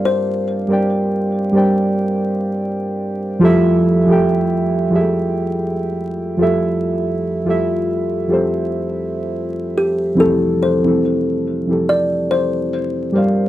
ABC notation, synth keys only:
X:1
M:4/4
L:1/16
Q:"Swing 16ths" 1/4=71
K:F
V:1 name="Synth keys"
[G,GBcdf]2 z [G,GBcdg]4 [G,GBcdg]6- [G,GBcdg] z2 | [F,FGAe]3 [F,FGAg]4 [F,FG_A=Ae]6- [F,FG_A=Ae] [F,FGAe]2- | [F,FGAe]2 z [F,FGAe]4 [F,FGAc]6- [F,FGAc] z2 | [F,CEGA]3 [F,CEGA]4 [F,CEGA]6- [F,CEGA] [G,GBcdf]2 |]